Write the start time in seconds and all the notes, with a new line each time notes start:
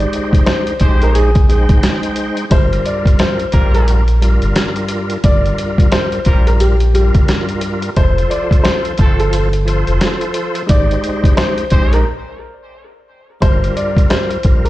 Already playing: G#3 D#4 G4 C5 D5
0.00 closed hi-hat
0.13 closed hi-hat
0.33 kick, closed hi-hat
0.46 C5, cross-stick, snare, closed hi-hat
0.67 closed hi-hat
0.80 A#1 G#3 C4 D#4 G4 C5, kick, closed hi-hat
1.02 A#4, closed hi-hat
1.15 G#4, closed hi-hat
1.35 kick, closed hi-hat
1.49 G#3 D#4 G#4 C5 G5, closed hi-hat
1.69 G#1, kick, closed hi-hat
1.83 cross-stick, snare, closed hi-hat
2.03 closed hi-hat
2.16 closed hi-hat
2.37 closed hi-hat
2.50 G1 G2 G3 F4 A#4 C5, kick, closed hi-hat
2.73 closed hi-hat
2.86 D5, closed hi-hat
3.06 kick, closed hi-hat
3.19 C5, cross-stick, snare, closed hi-hat
3.39 closed hi-hat
3.52 A#1 G2 G3 A#3 F4 A#4, kick, closed hi-hat
3.74 A#4, closed hi-hat
3.88 closed hi-hat
4.08 closed hi-hat
4.21 G2 G3 F4 A#4, closed hi-hat
4.42 G1, closed hi-hat
4.56 cross-stick, snare, closed hi-hat
4.76 closed hi-hat
4.88 closed hi-hat
5.10 closed hi-hat
5.23 G1 G2 G3 F4 A#4 D5, kick, closed hi-hat
5.46 closed hi-hat
5.58 closed hi-hat
5.78 kick, closed hi-hat
5.92 C5, cross-stick, snare, closed hi-hat
6.12 closed hi-hat
6.25 A#1 G2 G3 A#3 F4 A#4, kick, closed hi-hat
6.47 A#4, closed hi-hat
6.60 G4, closed hi-hat
6.80 closed hi-hat
6.93 G2 G3 F4 G4 A#4, closed hi-hat
7.15 G1, kick, closed hi-hat
7.28 cross-stick, snare, closed hi-hat
7.49 closed hi-hat
7.61 closed hi-hat
7.82 closed hi-hat
7.96 F1 F3 F4 A4 C5, kick, closed hi-hat
8.18 closed hi-hat
8.30 D5, closed hi-hat
8.51 kick, closed hi-hat
8.64 C5, cross-stick, snare, closed hi-hat
8.85 closed hi-hat
8.97 G1 F3 A3 C4 F4 A4 C5, kick, closed hi-hat
9.20 A4, closed hi-hat
9.33 closed hi-hat
9.53 closed hi-hat
9.65 F3 F4 A4 C5, closed hi-hat
9.87 F1, closed hi-hat
10.01 cross-stick, snare, closed hi-hat
10.21 closed hi-hat
10.34 closed hi-hat
10.55 closed hi-hat
10.66 G#1 G#3 D#4 G4 C5 D5, kick, closed hi-hat
10.91 closed hi-hat
11.04 closed hi-hat
11.24 kick, closed hi-hat
11.37 C5, cross-stick, snare, closed hi-hat
11.58 closed hi-hat
11.70 A#1 G#3 C4 D#4 G4 C5, kick, closed hi-hat
11.93 A#4, closed hi-hat
13.40 G1 G2 G3 F4 A#4 C5, kick, closed hi-hat
13.64 closed hi-hat
13.77 D5, closed hi-hat
13.97 kick, closed hi-hat
14.10 C5, cross-stick, snare, closed hi-hat
14.31 closed hi-hat
14.43 A#1 G2 G3 F4 A#4, kick, closed hi-hat
14.65 A#4, closed hi-hat